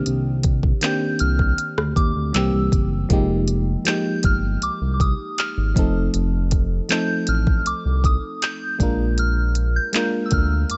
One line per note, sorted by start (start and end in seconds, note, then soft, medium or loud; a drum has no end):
0.00 0.59 D#3 medium
0.00 0.59 A#3 medium
0.00 0.60 C4 medium
0.00 0.60 D4 medium
0.00 0.61 G4 medium
0.06 0.72 C2 loud
0.06 closed hi-hat medium
0.43 kick medium
0.43 closed hi-hat medium
0.63 kick loud
0.81 1.76 D#3 medium
0.81 1.77 A#3 medium
0.81 1.77 C4 medium
0.81 1.78 D4 medium
0.81 1.18 G6 loud
0.81 clap loud
0.81 closed hi-hat medium
0.86 1.79 G4 medium
1.19 1.53 C2 loud
1.19 1.99 F6 loud
1.19 closed hi-hat medium
1.39 kick loud
1.58 closed hi-hat medium
1.78 1.94 D2 medium
1.78 cross-stick loud
1.96 2.13 D#2 loud
1.96 2.32 D6 medium
1.96 kick loud
1.96 closed hi-hat medium
2.16 2.32 D2 medium
2.33 2.51 C2 loud
2.33 2.94 E3 medium
2.33 2.95 G3 medium
2.33 2.95 A#3 medium
2.33 2.96 C4 medium
2.33 2.87 E6 medium
2.33 clap loud
2.33 closed hi-hat medium
2.37 2.97 G4 medium
2.53 2.70 C2 medium
2.72 3.05 F#1 medium
2.72 kick loud
2.72 closed hi-hat medium
3.09 3.76 F1 loud
3.09 3.57 F3 medium
3.09 3.57 G#3 medium
3.09 3.58 A#3 medium
3.09 3.58 D#4 medium
3.09 kick loud
3.09 closed hi-hat medium
3.13 3.59 G4 medium
3.48 closed hi-hat medium
3.85 4.80 F3 medium
3.85 4.81 G#3 medium
3.85 4.81 A#3 medium
3.85 4.82 D#4 medium
3.85 4.01 G6 loud
3.85 clap loud
3.85 closed hi-hat medium
3.89 4.82 G4 medium
4.23 4.57 G1 medium
4.23 4.64 F6 medium
4.23 kick medium
4.23 closed hi-hat medium
4.62 4.70 C2 soft
4.62 4.93 D6 medium
4.62 closed hi-hat medium
4.81 5.14 C2 medium
4.94 5.00 D6 medium
5.00 5.40 D#6 medium
5.00 kick loud
5.00 closed hi-hat medium
5.38 5.91 F6 medium
5.38 clap loud
5.38 closed hi-hat medium
5.57 5.74 G#1 medium
5.75 6.09 F1 loud
5.75 6.66 F3 medium
5.75 6.67 A3 medium
5.75 6.68 C4 medium
5.75 6.68 D#4 medium
5.75 kick loud
5.75 closed hi-hat medium
5.79 6.69 A4 medium
6.14 6.80 F1 loud
6.14 closed hi-hat medium
6.51 kick loud
6.51 closed hi-hat medium
6.89 7.84 F3 medium
6.89 7.85 A3 medium
6.89 7.85 C4 medium
6.89 7.86 D#4 medium
6.89 7.26 G6 loud
6.89 clap loud
6.89 closed hi-hat medium
6.93 7.86 A4 medium
7.27 7.61 A1 loud
7.27 7.67 F6 loud
7.27 closed hi-hat medium
7.47 kick loud
7.66 7.74 C2 soft
7.66 8.05 D6 medium
7.66 closed hi-hat medium
7.85 8.18 C2 medium
8.04 8.40 D#6 medium
8.04 kick medium
8.04 closed hi-hat medium
8.42 9.21 G6 loud
8.42 clap loud
8.42 closed hi-hat medium
8.79 9.79 A#1 loud
8.79 9.70 G#3 medium
8.79 9.71 A#3 medium
8.79 9.71 D4 medium
8.79 9.72 F4 medium
8.79 kick loud
8.79 closed hi-hat medium
8.83 9.72 A#4 medium
9.18 9.77 F6 loud
9.18 closed hi-hat medium
9.55 closed hi-hat medium
9.76 10.27 G6 loud
9.92 10.77 G#3 medium
9.92 10.77 A#3 medium
9.92 10.77 D4 medium
9.92 10.77 F4 medium
9.92 clap loud
9.92 closed hi-hat medium
9.97 10.77 A#4 medium
10.26 10.32 E6 medium
10.31 10.65 D2 loud
10.31 10.71 F6 medium
10.31 kick medium
10.31 closed hi-hat medium
10.70 10.77 F2 soft
10.70 10.77 D6 medium
10.70 closed hi-hat medium